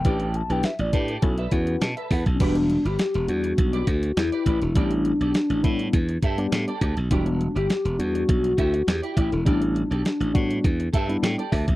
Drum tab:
CC |----------------|x---------------|----------------|----------------|
HH |xxxxxxxxxxxxxxox|xxxxxxxxxxxxxxxx|xxxxxxxxxxxxxxxx|xxxxxxxxxxxxxxxx|
SD |----o-------o---|----o-------o---|----o-------o---|----o-------o---|
BD |o-----o-o-o---oo|o-------o-o---o-|o-----o-o-o---o-|o-------o-o---o-|

CC |----------------|
HH |xxxxxxxxxxxxxxox|
SD |----o-------o---|
BD |o-----o-o-o---oo|